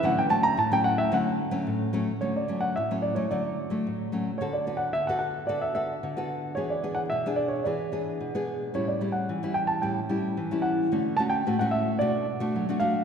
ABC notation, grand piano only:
X:1
M:4/4
L:1/16
Q:1/4=110
K:D
V:1 name="Grand piano"
f g a _b a g f e f4 z4 | c d2 f e2 d c d6 z2 | c d2 f e f f2 d e e4 z2 | c d2 f e2 d c d6 z2 |
c d2 f3 g a g6 f2- | f2 a g2 f e2 d6 =f2 |]